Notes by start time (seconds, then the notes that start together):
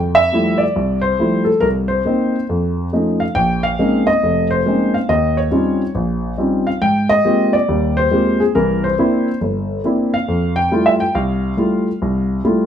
Already playing: F2
0.15 E5
0.32 F3 G3 A3 E4
0.58 D5
0.76 C2
1.02 C5
1.19 F3 G3 A3 E4
1.45 A4
1.60 C2 A#4
1.88 C5
2.05 A#3 C4 D#4
2.49 F2
2.93 F3 A3 C#4 D#4
3.20 F5
3.35 A#1 G5
3.63 F5
3.79 G#3 A#3 C4 C#4 D#4
4.07 D#5
4.23 F1
4.51 C5
4.66 G#3 A#3 C4 C#4 D#4
4.94 F5
5.09 D#2 D#5
5.37 C#5
5.51 G3 C4 C#4 D#4 F4
5.95 A#1
6.38 G3 C4 C#4 D#4 F4
6.67 F5
6.82 G#2 G5
7.09 D#5
7.25 G#3 A#3 C4 F4 G4
7.53 D5
7.68 D#2 G3
7.97 C5
8.11 G#3 A#3 C4 F4 G4
8.40 G#4
8.55 C2 E3 A#4
8.84 C5
8.99 A#3 C4 D4 E4
9.41 G1
9.84 A#3 C4 D4 E4
10.14 F5
10.28 F2
10.56 G5
10.71 G3 A3 E4 F4
10.86 E5
11.00 G5
11.15 C2 F5
11.57 G3 A3 E4 F4
12.02 C2
12.44 G3 A3 E4 F4